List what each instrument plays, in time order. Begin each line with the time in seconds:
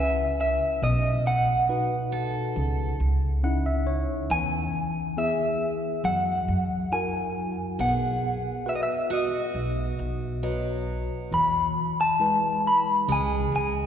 Already playing: upright bass C#2, tine electric piano C#3 C#4 E4 B4, clean electric guitar E5
0.41 clean electric guitar E5
0.82 upright bass B1, tine electric piano B2, clean electric guitar D#5
1.27 clean electric guitar F#5
1.69 tine electric piano D#4 F#4 B4
2.12 steel-string acoustic guitar A4
2.56 upright bass C#2, tine electric piano C#3
3.00 upright bass C#2
3.43 tine electric piano C#4 D#4 E4 F#5
3.66 tine electric piano E5
3.87 tine electric piano C#5
4.30 upright bass E2, tine electric piano E3, clean electric guitar G#5
5.17 tine electric piano B3 E4 G#4, clean electric guitar E5
6.04 upright bass F#2, tine electric piano F#3, clean electric guitar F#5
6.48 upright bass F#2
6.92 tine electric piano E4 F#4 A#4, clean electric guitar G#5
7.79 upright bass B1, tine electric piano B3, steel-string acoustic guitar G#4, clean electric guitar F#5
8.66 tine electric piano F#4 B4 F#5, clean electric guitar E5
8.76 clean electric guitar D#5
8.83 clean electric guitar E5
9.10 steel-string acoustic guitar F#4, clean electric guitar D#5
9.54 upright bass B1
9.99 upright bass B1
10.43 steel-string acoustic guitar F#3, tine electric piano F#4 B4 D#5
11.31 upright bass E2, tine electric piano E3, clean electric guitar B5
12.01 clean electric guitar A5
12.20 tine electric piano G#3 E4 B4
12.67 clean electric guitar B5
13.08 upright bass C#2, tine electric piano C#3, steel-string acoustic guitar G#3
13.12 clean electric guitar G#5
13.52 upright bass C#2, clean electric guitar G#5